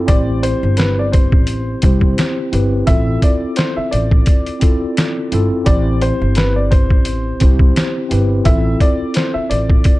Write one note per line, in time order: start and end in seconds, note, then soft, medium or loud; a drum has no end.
0.00 0.06 C4 medium
0.00 0.07 E4 medium
0.00 0.10 F4 medium
0.00 0.10 A4 medium
0.06 0.52 A1 loud
0.06 1.40 C4 medium
0.06 1.41 E4 medium
0.06 1.41 G4 medium
0.06 1.42 C5 medium
0.06 0.39 D5 medium
0.06 kick loud
0.06 closed hi-hat medium
0.43 0.74 C5 medium
0.43 closed hi-hat medium
0.63 1.33 G1 medium
0.77 0.95 B4 medium
0.77 snare loud
0.77 closed hi-hat medium
0.99 1.12 D5 medium
1.12 2.33 C5 medium
1.12 kick loud
1.12 closed hi-hat medium
1.32 1.73 A1 medium
1.32 kick medium
1.47 closed hi-hat medium
1.82 2.11 C2 medium
1.82 2.49 C4 medium
1.82 2.49 E4 medium
1.82 2.50 G4 medium
1.82 2.50 C5 medium
1.82 kick loud
1.82 closed hi-hat medium
2.01 kick medium
2.18 snare loud
2.18 closed hi-hat loud
2.52 2.81 G1 medium
2.52 2.85 C4 medium
2.52 2.86 E4 medium
2.52 2.86 G4 medium
2.52 2.87 B4 medium
2.52 closed hi-hat medium
2.86 3.15 A1 loud
2.86 4.20 C4 medium
2.86 4.20 E4 medium
2.86 4.21 F4 medium
2.86 4.21 A4 medium
2.86 3.18 E5 loud
2.86 kick loud
2.86 closed hi-hat medium
3.22 3.54 D5 medium
3.22 kick medium
3.22 closed hi-hat medium
3.56 3.75 C5 medium
3.56 snare loud
3.56 closed hi-hat medium
3.76 3.90 E5 medium
3.76 muted upright bass stroke soft
3.91 4.20 A1 medium
3.91 5.62 D5 medium
3.91 closed hi-hat medium
4.11 kick medium
4.26 kick medium
4.26 closed hi-hat medium
4.46 closed hi-hat medium
4.60 5.27 C4 medium
4.60 5.28 E4 medium
4.60 5.28 F4 medium
4.60 5.29 A4 medium
4.60 kick medium
4.60 closed hi-hat medium
4.97 snare loud
4.97 closed hi-hat loud
5.31 5.47 G1 medium
5.31 5.63 C4 medium
5.31 5.64 E4 medium
5.31 5.66 F4 medium
5.31 5.66 A4 medium
5.31 closed hi-hat medium
5.65 6.10 A1 loud
5.65 6.98 C4 medium
5.65 6.99 E4 medium
5.65 6.99 G4 medium
5.65 7.00 C5 medium
5.65 5.98 D5 medium
5.65 kick loud
5.65 closed hi-hat medium
6.01 6.33 C5 medium
6.01 closed hi-hat medium
6.21 6.91 G1 medium
6.35 6.54 B4 medium
6.35 snare loud
6.35 closed hi-hat medium
6.56 6.70 D5 medium
6.71 7.91 C5 medium
6.71 kick loud
6.71 closed hi-hat medium
6.90 7.31 A1 medium
6.90 kick medium
7.05 closed hi-hat medium
7.40 7.69 C2 medium
7.40 8.07 C4 medium
7.40 8.07 E4 medium
7.40 8.08 G4 medium
7.40 8.08 C5 medium
7.40 kick loud
7.40 closed hi-hat medium
7.59 kick medium
7.76 snare loud
7.76 closed hi-hat loud
8.09 8.39 G1 medium
8.09 8.43 C4 medium
8.09 8.44 E4 medium
8.09 8.44 G4 medium
8.09 8.45 B4 medium
8.09 closed hi-hat medium
8.44 8.74 A1 loud
8.44 9.78 C4 medium
8.44 9.78 E4 medium
8.44 9.78 F4 medium
8.44 9.79 A4 medium
8.44 8.77 E5 loud
8.44 kick loud
8.44 closed hi-hat medium
8.80 9.12 D5 medium
8.80 kick medium
8.80 closed hi-hat medium
9.14 9.33 C5 medium
9.14 snare loud
9.14 closed hi-hat medium
9.34 9.48 E5 medium
9.34 muted upright bass stroke soft
9.50 9.78 A1 medium
9.50 9.99 D5 medium
9.50 closed hi-hat medium
9.70 kick medium
9.84 kick loud
9.84 closed hi-hat medium